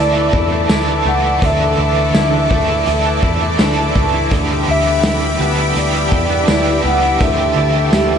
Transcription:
Already playing: D2 D3 E3 A3 E4 A4 D5 E5 D6
0.00 D4 E4 A4 D5
0.16 E3
0.33 E2 E4, kick
0.52 A3
0.68 D2 E3 A3 D4 E4, snare, closed hi-hat, tambourine
0.73 A4
0.88 E3
1.05 C#2 A3 F#5
1.25 E4
1.41 D2 D3 E3 A3 D4 A4, kick, closed hi-hat
1.45 E5
1.60 E3
1.78 D2 E4 E5
1.97 A3
2.15 D2 E4, snare, closed hi-hat, tambourine
2.33 E3
2.49 D2 A3 D4 A4, kick
2.54 A3
2.69 E4
2.86 D2 E3 A3 D4, closed hi-hat
2.90 A4
3.05 E3
3.23 E2 E4, kick
3.42 A3
3.58 D2 E3 A3 D4 E4, snare, closed hi-hat, tambourine
3.63 A4
3.78 E3
3.95 C#2 A3, kick
4.14 E4
4.31 D2 D3 E3 B3 D4 G4 E5 B5, kick, closed hi-hat
4.50 G3
4.68 D2 E4 E5
4.87 B3
5.03 D2 E4, snare, closed hi-hat, tambourine
5.23 G3
5.39 D2 B3 D4 G4
5.44 B3
5.59 E4
5.75 D2 E3 B3 D4 D5, closed hi-hat
5.79 G4
5.95 G3
6.12 E2 E4, kick
6.30 B3
6.47 D2 E3 B3 D4 E4, snare, closed hi-hat, tambourine
6.51 G4
6.67 G3
6.72 G4
6.84 C#2 B3 F#5
7.03 E4
7.18 D2 D3 E3 A5, kick, closed hi-hat
7.23 A3 D4 G4 E5
7.39 G3
7.56 D2 E4
7.75 A3
7.92 D2 E4 G4 E5, snare, closed hi-hat, tambourine
8.12 G3

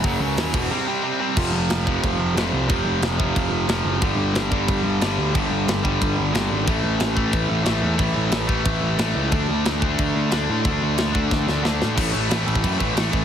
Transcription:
0.04 F#1 F#2 C#3 F#3, kick, open hi-hat
0.20 C#2 F#2 C#3 F#3
0.36 D#2 F#2 C#3 F#3, snare, open hi-hat
0.53 E1 E2 B2 E3, kick, crash
0.71 C3 G3 C4
0.87 C3 G3 C4
1.03 C3 G3 C4
1.20 C3 G3 C4
1.34 F1 F2 C3 F3, kick, crash
1.52 F1
1.70 F1, snare, crash
1.85 F2 C3 F3, kick
2.04 F1, kick, crash
2.19 F1
2.35 F1 F2 C3 F3, snare, crash
2.53 C2
2.67 F1 F2 C3 F3, kick, crash
2.85 F1
3.01 F1, snare, crash
3.18 F2 C3 F3, kick
3.36 F1, kick, crash
3.50 F1
3.67 F1 F2 C3 F3, snare, crash
3.85 F#1
4.00 G1 G2 D3 G3, kick, crash
4.16 G1
4.34 G1, snare, crash
4.51 G2 D3 G3, kick
4.68 G1, kick, crash
4.84 G1
5.01 G1 G2 D3 G3, snare, crash
5.18 D2
5.34 G1 G2 D3 G3, kick, crash
5.51 G1
5.68 G1, snare, crash
5.83 G2 D3 G3, kick
6.02 G1, kick, crash
6.18 G1
6.32 G1 G2 D3 G3, snare, crash
6.51 G#1
6.65 A1 A2 E3 A3, kick, crash
6.84 A1
7.00 A1, snare, crash
7.15 A2 E3 A3, kick
7.33 A1, kick, crash
7.50 A1
7.63 A1 A2 E3 A3, snare, crash
7.82 E2
7.97 A1 A2 E3 A3, kick, crash
8.16 A1
8.32 A1, snare, crash
8.47 A2 E3 A3, kick
8.65 A1, kick, crash
8.82 A1
8.97 A1 A2 E3 A3, snare, crash
9.15 C#2
9.31 D2 D3 A3 D4, kick, crash
9.49 D2
9.65 D2, snare, crash
9.80 D3 A3 D4, kick
9.98 D2, kick, crash
10.16 D2
10.30 D2 D3 A3 D4, snare, crash
10.49 A2
10.62 D2 D3 A3 D4, kick, crash
10.83 D2
10.98 D2, snare, crash
11.13 D3 A3 D4, kick
11.31 D2, kick, snare
11.48 D2, snare
11.63 D2 D3 A3 D4, snare
11.82 A2, snare
11.96 A1 A2 E3 A3, kick, crash
12.12 A1 A2 E3 A3, crash
12.29 A1 A2 E3 A3, snare, crash
12.46 A1 A2 E3 A3, crash
12.55 kick
12.62 F#2 A2 E3 A3, kick, crash
12.79 A1 A2 E3 A3, kick, crash
12.95 A1 A2 E3 A3, snare, crash
13.12 A1 A2 E3 A3, kick, crash

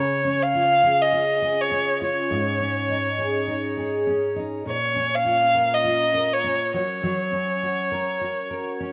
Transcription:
Already playing: C#3 C#4 C#5
0.24 C#4
0.43 F5
0.54 F4
0.83 G#4
1.01 D#5
1.12 F4
1.42 G#4
1.61 C#5
1.71 C#4
2.01 F4 C#5
2.30 G#2
2.60 C#4
2.89 D#4
3.19 G#4
3.48 D#4
3.77 G#4
4.07 C#4
4.36 D#4
4.65 A#2 C#5
4.96 C#4
5.15 F5
5.25 F4
5.54 A#4
5.74 D#5
5.84 F4
6.14 A#4
6.33 C#5
6.44 C#4
6.74 F#3 C#5
7.03 F#3
7.33 C#4
7.63 F#4
7.91 A#4
8.21 F#4
8.50 A#4
8.80 C#4

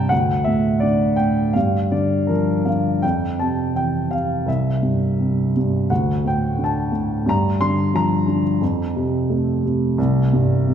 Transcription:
Already playing: C2 G2 C3 G5 A5 A#5
0.09 D2 F#5
0.44 A2 E5
0.80 D3 D5
1.16 A2 G5
1.53 G2 F5
1.91 D3 D5
2.27 F3 A#4
2.65 D3 F5
3.02 F2 G5
3.39 C3 A5
3.74 E3 G5
4.10 C3 F5
4.46 C2 E5
4.82 G2
5.19 C3
5.57 G2
5.90 D2 F#5
6.25 A2 G5
6.58 D3
6.64 A5
6.92 A2
7.26 G2 A#5
7.61 D3 C6
7.94 F3 A#5
8.28 D3
8.61 F2
8.96 C3
9.30 A3
9.64 C3
9.98 C2
10.33 G2
10.67 C3

